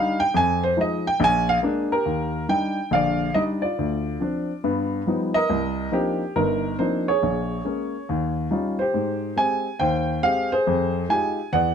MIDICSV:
0, 0, Header, 1, 2, 480
1, 0, Start_track
1, 0, Key_signature, -3, "major"
1, 0, Tempo, 430108
1, 375, Time_signature, 4, 2, 24, 8
1, 13107, End_track
2, 0, Start_track
2, 0, Title_t, "Grand piano"
2, 0, Program_c, 0, 0
2, 0, Note_on_c, 0, 55, 62
2, 0, Note_on_c, 0, 62, 53
2, 0, Note_on_c, 0, 63, 74
2, 0, Note_on_c, 0, 77, 98
2, 216, Note_off_c, 0, 77, 0
2, 222, Note_on_c, 0, 79, 107
2, 224, Note_off_c, 0, 55, 0
2, 227, Note_off_c, 0, 62, 0
2, 228, Note_off_c, 0, 63, 0
2, 378, Note_off_c, 0, 79, 0
2, 384, Note_on_c, 0, 41, 75
2, 408, Note_on_c, 0, 80, 102
2, 693, Note_off_c, 0, 80, 0
2, 709, Note_on_c, 0, 72, 94
2, 793, Note_off_c, 0, 41, 0
2, 856, Note_on_c, 0, 53, 51
2, 860, Note_on_c, 0, 56, 52
2, 861, Note_off_c, 0, 72, 0
2, 864, Note_on_c, 0, 63, 62
2, 903, Note_on_c, 0, 75, 90
2, 1180, Note_off_c, 0, 75, 0
2, 1182, Note_off_c, 0, 53, 0
2, 1184, Note_off_c, 0, 56, 0
2, 1186, Note_off_c, 0, 63, 0
2, 1198, Note_on_c, 0, 79, 99
2, 1337, Note_on_c, 0, 34, 87
2, 1345, Note_off_c, 0, 79, 0
2, 1384, Note_on_c, 0, 80, 116
2, 1660, Note_off_c, 0, 80, 0
2, 1664, Note_on_c, 0, 77, 101
2, 1749, Note_off_c, 0, 34, 0
2, 1759, Note_off_c, 0, 77, 0
2, 1816, Note_on_c, 0, 56, 59
2, 1821, Note_on_c, 0, 58, 60
2, 1830, Note_on_c, 0, 62, 67
2, 2141, Note_off_c, 0, 56, 0
2, 2144, Note_off_c, 0, 58, 0
2, 2145, Note_on_c, 0, 70, 92
2, 2148, Note_off_c, 0, 62, 0
2, 2154, Note_on_c, 0, 67, 62
2, 2295, Note_on_c, 0, 39, 62
2, 2708, Note_off_c, 0, 39, 0
2, 2737, Note_off_c, 0, 70, 0
2, 2777, Note_on_c, 0, 55, 49
2, 2777, Note_on_c, 0, 62, 49
2, 2778, Note_on_c, 0, 63, 58
2, 2783, Note_on_c, 0, 79, 97
2, 3053, Note_off_c, 0, 67, 0
2, 3102, Note_off_c, 0, 55, 0
2, 3102, Note_off_c, 0, 62, 0
2, 3102, Note_off_c, 0, 63, 0
2, 3249, Note_on_c, 0, 34, 65
2, 3249, Note_on_c, 0, 50, 61
2, 3268, Note_on_c, 0, 77, 96
2, 3271, Note_off_c, 0, 79, 0
2, 3284, Note_on_c, 0, 74, 75
2, 3665, Note_off_c, 0, 34, 0
2, 3665, Note_off_c, 0, 50, 0
2, 3707, Note_off_c, 0, 77, 0
2, 3732, Note_on_c, 0, 75, 90
2, 3737, Note_on_c, 0, 55, 51
2, 3745, Note_on_c, 0, 62, 46
2, 3748, Note_on_c, 0, 63, 59
2, 3802, Note_off_c, 0, 75, 0
2, 4023, Note_off_c, 0, 74, 0
2, 4039, Note_on_c, 0, 74, 78
2, 4062, Note_off_c, 0, 55, 0
2, 4064, Note_on_c, 0, 65, 50
2, 4066, Note_off_c, 0, 62, 0
2, 4068, Note_off_c, 0, 63, 0
2, 4223, Note_on_c, 0, 38, 60
2, 4633, Note_off_c, 0, 38, 0
2, 4689, Note_on_c, 0, 53, 50
2, 4697, Note_on_c, 0, 60, 42
2, 4706, Note_on_c, 0, 62, 58
2, 5019, Note_off_c, 0, 53, 0
2, 5023, Note_off_c, 0, 60, 0
2, 5027, Note_off_c, 0, 62, 0
2, 5178, Note_on_c, 0, 43, 74
2, 5178, Note_on_c, 0, 59, 68
2, 5438, Note_off_c, 0, 74, 0
2, 5450, Note_off_c, 0, 65, 0
2, 5591, Note_off_c, 0, 43, 0
2, 5591, Note_off_c, 0, 59, 0
2, 5654, Note_on_c, 0, 53, 54
2, 5656, Note_on_c, 0, 55, 50
2, 5659, Note_on_c, 0, 59, 52
2, 5667, Note_on_c, 0, 63, 60
2, 5963, Note_on_c, 0, 75, 100
2, 5982, Note_off_c, 0, 53, 0
2, 5983, Note_off_c, 0, 55, 0
2, 5984, Note_off_c, 0, 59, 0
2, 5984, Note_on_c, 0, 70, 72
2, 5989, Note_off_c, 0, 63, 0
2, 6134, Note_on_c, 0, 36, 68
2, 6549, Note_off_c, 0, 36, 0
2, 6602, Note_on_c, 0, 53, 50
2, 6605, Note_on_c, 0, 58, 52
2, 6607, Note_on_c, 0, 60, 52
2, 6611, Note_on_c, 0, 63, 55
2, 6614, Note_on_c, 0, 62, 45
2, 6620, Note_on_c, 0, 67, 79
2, 6633, Note_off_c, 0, 75, 0
2, 6890, Note_off_c, 0, 70, 0
2, 6936, Note_off_c, 0, 53, 0
2, 6937, Note_off_c, 0, 58, 0
2, 6939, Note_off_c, 0, 60, 0
2, 6941, Note_off_c, 0, 63, 0
2, 6942, Note_off_c, 0, 62, 0
2, 7096, Note_on_c, 0, 70, 92
2, 7099, Note_on_c, 0, 31, 74
2, 7104, Note_on_c, 0, 63, 60
2, 7111, Note_off_c, 0, 67, 0
2, 7512, Note_off_c, 0, 31, 0
2, 7542, Note_off_c, 0, 70, 0
2, 7570, Note_off_c, 0, 63, 0
2, 7575, Note_on_c, 0, 72, 84
2, 7578, Note_on_c, 0, 58, 50
2, 7583, Note_on_c, 0, 60, 54
2, 7584, Note_on_c, 0, 53, 57
2, 7587, Note_on_c, 0, 63, 61
2, 7588, Note_on_c, 0, 62, 51
2, 7895, Note_off_c, 0, 72, 0
2, 7904, Note_off_c, 0, 58, 0
2, 7904, Note_on_c, 0, 73, 80
2, 7907, Note_off_c, 0, 53, 0
2, 7907, Note_off_c, 0, 60, 0
2, 7909, Note_off_c, 0, 62, 0
2, 7909, Note_off_c, 0, 63, 0
2, 7911, Note_on_c, 0, 68, 56
2, 8066, Note_on_c, 0, 34, 66
2, 8476, Note_off_c, 0, 34, 0
2, 8536, Note_on_c, 0, 56, 44
2, 8542, Note_on_c, 0, 58, 43
2, 8542, Note_on_c, 0, 61, 54
2, 8863, Note_off_c, 0, 56, 0
2, 8866, Note_off_c, 0, 58, 0
2, 8866, Note_off_c, 0, 61, 0
2, 8982, Note_off_c, 0, 68, 0
2, 9031, Note_on_c, 0, 39, 69
2, 9290, Note_off_c, 0, 73, 0
2, 9438, Note_off_c, 0, 39, 0
2, 9494, Note_on_c, 0, 61, 44
2, 9495, Note_on_c, 0, 55, 55
2, 9498, Note_on_c, 0, 63, 48
2, 9504, Note_on_c, 0, 65, 61
2, 9809, Note_on_c, 0, 72, 77
2, 9822, Note_off_c, 0, 61, 0
2, 9823, Note_off_c, 0, 55, 0
2, 9824, Note_off_c, 0, 63, 0
2, 9827, Note_off_c, 0, 65, 0
2, 9834, Note_on_c, 0, 67, 66
2, 9976, Note_on_c, 0, 44, 66
2, 10390, Note_off_c, 0, 44, 0
2, 10444, Note_off_c, 0, 67, 0
2, 10451, Note_on_c, 0, 56, 50
2, 10457, Note_on_c, 0, 60, 47
2, 10461, Note_on_c, 0, 67, 55
2, 10463, Note_on_c, 0, 80, 94
2, 10475, Note_off_c, 0, 72, 0
2, 10780, Note_off_c, 0, 56, 0
2, 10784, Note_off_c, 0, 60, 0
2, 10786, Note_off_c, 0, 67, 0
2, 10931, Note_on_c, 0, 79, 92
2, 10941, Note_on_c, 0, 39, 73
2, 10941, Note_on_c, 0, 72, 72
2, 10953, Note_off_c, 0, 80, 0
2, 11353, Note_off_c, 0, 39, 0
2, 11418, Note_on_c, 0, 56, 51
2, 11418, Note_on_c, 0, 60, 47
2, 11418, Note_on_c, 0, 77, 102
2, 11424, Note_on_c, 0, 67, 62
2, 11427, Note_off_c, 0, 79, 0
2, 11726, Note_off_c, 0, 72, 0
2, 11737, Note_off_c, 0, 77, 0
2, 11743, Note_on_c, 0, 72, 98
2, 11744, Note_off_c, 0, 56, 0
2, 11744, Note_off_c, 0, 60, 0
2, 11747, Note_off_c, 0, 67, 0
2, 11754, Note_on_c, 0, 68, 62
2, 11909, Note_on_c, 0, 41, 73
2, 12317, Note_off_c, 0, 41, 0
2, 12377, Note_on_c, 0, 56, 50
2, 12384, Note_on_c, 0, 63, 50
2, 12386, Note_on_c, 0, 65, 48
2, 12388, Note_on_c, 0, 80, 99
2, 12391, Note_on_c, 0, 67, 63
2, 12402, Note_off_c, 0, 72, 0
2, 12655, Note_off_c, 0, 68, 0
2, 12703, Note_off_c, 0, 56, 0
2, 12707, Note_off_c, 0, 63, 0
2, 12708, Note_off_c, 0, 65, 0
2, 12710, Note_off_c, 0, 67, 0
2, 12864, Note_on_c, 0, 40, 72
2, 12864, Note_on_c, 0, 78, 100
2, 12875, Note_off_c, 0, 80, 0
2, 12879, Note_on_c, 0, 74, 65
2, 13107, Note_off_c, 0, 40, 0
2, 13107, Note_off_c, 0, 74, 0
2, 13107, Note_off_c, 0, 78, 0
2, 13107, End_track
0, 0, End_of_file